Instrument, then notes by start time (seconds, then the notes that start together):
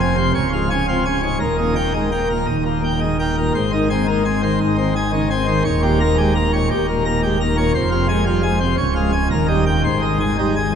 pipe organ
Already playing: F1 F2
0.00 C4 G#5
0.17 C3 C5
0.34 C#1 C#2 C#5
0.53 G#2 F4
0.70 C#4 G#5
0.88 C4 F4
1.05 C#4 G#5
1.23 G#2 C#5
1.40 D#1 D#2 A#4
1.58 A#2 D#4
1.76 A#3 G5
1.94 G#3 D#4
2.11 A#3 G5
2.30 A#2 A#4
2.47 D#1 D#2 D#4
2.66 A#2 A#3
2.83 A#2 G5
3.01 G#2 D#4
3.19 A#3 G5
3.37 A#2 A#4
3.55 G#1 G#2 C5
3.72 D#3 D#4
3.90 C4 G#5
4.07 A#3 D#4
4.25 C4 G#5
4.42 D#3 C5
4.61 G#1 G#2 D#4
4.78 D#3 C4
4.95 D#3 G#5
5.13 C#3 D#4
5.30 C4 G#5
5.48 D#3 C5
5.65 D#1 D#2 C#5
5.82 A#2 G4
6.00 A#3 A#5
6.18 G#3 G4
6.35 A#3 A#5
6.53 A#2 C#5
6.71 D#1 D#2 G4
6.88 A#2 A#3
7.05 A#2 A#5
7.23 G#2 G4
7.40 A#3 A#5
7.57 A#2 C#5
7.75 F1 F2 C5
7.91 C3 F4
8.09 G#3 G#5
8.26 G3 F4
8.43 G#3 G#5
8.60 C3 C5
8.78 C#1 C#2 C#5
8.95 G#3 F4
9.12 G#5
9.31 D#1 D#2 A#4
9.48 G3 D#4
9.66 G5
9.84 G#1 G#2 C5
10.02 D#3 D#4
10.20 G#3 G#5
10.38 G3 D#4
10.56 G#3 G#5